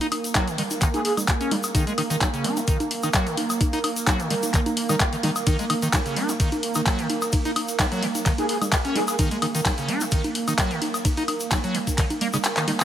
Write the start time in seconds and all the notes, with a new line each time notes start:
Already playing: A#3
0.01 D#4, open hi-hat, shaker
0.12 open hi-hat, high conga, high woodblock
0.24 closed hi-hat, shaker
0.35 F#3, kick, clap, closed hi-hat, high conga, shaker
0.48 D#3, closed hi-hat, shaker
0.58 D#3, open hi-hat, low conga
0.70 closed hi-hat, high conga, shaker
0.81 D#3, kick, clap, closed hi-hat, shaker
0.94 G#4, closed hi-hat, high conga, shaker
1.05 G#4, open hi-hat
1.17 closed hi-hat, high conga, low conga, high woodblock, shaker
1.28 kick, clap, closed hi-hat, shaker
1.41 C#4, closed hi-hat, shaker
1.51 D#3, open hi-hat, high conga, low conga
1.63 closed hi-hat, high woodblock, shaker
1.75 D#3, kick, closed hi-hat, high conga, shaker
1.87 G#3, closed hi-hat, shaker
1.98 D#3, open hi-hat, high conga, high woodblock
2.10 D#3, closed hi-hat, shaker
2.21 F#3, kick, clap, closed hi-hat, high conga, shaker
2.34 C#3, closed hi-hat, shaker
2.44 D#4, open hi-hat, low conga
2.57 F3, closed hi-hat, high conga, shaker
2.68 D#3, kick, closed hi-hat, shaker
2.80 closed hi-hat, high conga, shaker
2.91 open hi-hat
3.03 D#3, closed hi-hat, high conga, high woodblock, shaker
3.13 F#3, kick, clap, closed hi-hat, shaker
3.27 D#3, closed hi-hat, shaker
3.37 open hi-hat, high conga
3.50 closed hi-hat, high woodblock, shaker
3.61 kick, closed hi-hat, high conga, shaker
3.73 D#4, open hi-hat, shaker
3.84 open hi-hat, high conga, high woodblock
3.96 closed hi-hat, shaker
4.07 F#3, kick, clap, closed hi-hat, high conga, shaker
4.19 D#3, closed hi-hat, shaker
4.30 D#3, open hi-hat, low conga
4.43 closed hi-hat, high conga, shaker
4.54 D#3, kick, clap, closed hi-hat, shaker
4.66 closed hi-hat, high conga, shaker
4.77 open hi-hat
4.89 D#3, closed hi-hat, high conga, low conga, high woodblock, shaker
5.00 kick, clap, closed hi-hat, shaker
5.13 D#3, closed hi-hat, shaker
5.23 D#3, open hi-hat, high conga, low conga
5.36 closed hi-hat, high woodblock, shaker
5.47 D#3, kick, closed hi-hat, ride, high conga, shaker
5.59 G#3, closed hi-hat, shaker
5.70 D#3, open hi-hat, high conga, high woodblock
5.82 D#3, closed hi-hat, shaker
5.93 F#3, kick, clap, closed hi-hat, ride, high conga, shaker
6.06 C#3, closed hi-hat, shaker
6.16 D#4, open hi-hat, low conga
6.29 F3, closed hi-hat, high conga, shaker
6.40 D#3, kick, closed hi-hat, ride, shaker
6.52 closed hi-hat, high conga, shaker
6.63 open hi-hat
6.75 D#3, closed hi-hat, high conga, high woodblock, shaker
6.86 F#3, kick, clap, closed hi-hat, ride, shaker
6.99 D#3, closed hi-hat, shaker
7.10 open hi-hat, high conga
7.22 closed hi-hat, high woodblock, shaker
7.32 kick, closed hi-hat, ride, high conga, shaker
7.45 D#4, open hi-hat, shaker
7.56 open hi-hat, high conga, high woodblock
7.68 closed hi-hat, shaker
7.79 F#3, kick, clap, closed hi-hat, ride, high conga, shaker
7.92 F#3, closed hi-hat, shaker
8.03 D#3, open hi-hat, low conga
8.15 closed hi-hat, high conga, shaker
8.26 D#3, kick, clap, closed hi-hat, ride, shaker
8.38 G#4, closed hi-hat, high conga, shaker
8.49 G#4, open hi-hat
8.62 closed hi-hat, high conga, low conga, high woodblock, shaker
8.72 kick, clap, closed hi-hat, ride, shaker
8.85 C#4, closed hi-hat, shaker
8.96 D#3 G#4, open hi-hat, high conga, low conga
9.08 G#4, closed hi-hat, high woodblock, shaker
9.19 D#3, kick, closed hi-hat, ride, high conga, shaker
9.31 G#3, closed hi-hat, shaker
9.42 D#3, open hi-hat, high conga, high woodblock
9.55 D#3, closed hi-hat, shaker
9.65 F#3, kick, clap, closed hi-hat, ride, high conga
9.78 C#3, closed hi-hat, shaker
9.89 D#4, open hi-hat, low conga
10.01 F3, closed hi-hat, high conga, shaker
10.11 D#3, kick, closed hi-hat, ride, shaker
10.24 closed hi-hat, high conga, shaker
10.35 open hi-hat
10.48 D#3, closed hi-hat, high conga, high woodblock, shaker
10.58 F#3, kick, clap, closed hi-hat, ride, shaker
10.71 D#3, closed hi-hat, shaker
10.82 open hi-hat, high conga
10.94 closed hi-hat, high woodblock, shaker
11.05 kick, closed hi-hat, ride, high conga, shaker
11.17 D#4, open hi-hat, shaker
11.28 open hi-hat, high conga, high woodblock
11.40 closed hi-hat, shaker
11.51 F#3, kick, clap, closed hi-hat, ride, high conga, shaker
11.64 F#3, closed hi-hat, shaker
11.75 D#3, open hi-hat, low conga
11.87 kick, closed hi-hat, high conga, shaker
11.98 D#3, kick, clap, closed hi-hat, ride, shaker
12.10 closed hi-hat, high conga, shaker
12.21 A#3, open hi-hat, low conga
12.33 C#3, closed hi-hat, high conga, low conga, high woodblock, shaker
12.43 clap, closed hi-hat, ride, shaker
12.57 D#3, clap, closed hi-hat, shaker
12.68 D#3, open hi-hat, high conga, low conga
12.80 D#3, clap, closed hi-hat, high woodblock, shaker